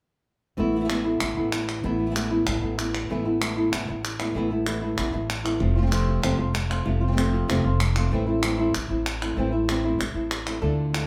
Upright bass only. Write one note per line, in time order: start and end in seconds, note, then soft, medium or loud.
0.58 1.17 A1 medium
1.21 1.35 A1 medium
1.37 1.80 A1 medium
1.84 2.43 A1 medium
2.47 2.61 A1 medium
2.62 3.05 A1 medium
3.10 3.69 A1 medium
3.72 3.86 A1 medium
3.88 4.31 A1 medium
4.35 4.94 A1 medium
4.98 5.12 A1 medium
5.15 5.57 A1 medium
5.60 6.19 F1 medium
6.23 6.38 F1 medium
6.38 6.82 F1 medium
6.86 7.45 F1 medium
7.48 7.63 F1 medium
7.64 8.07 F1 medium
8.11 8.70 A1 medium
8.74 8.89 A1 medium
8.90 9.33 A1 medium
9.37 9.96 A1 medium
9.99 10.13 A1 medium
10.14 10.58 A1 medium
10.62 11.07 D2 medium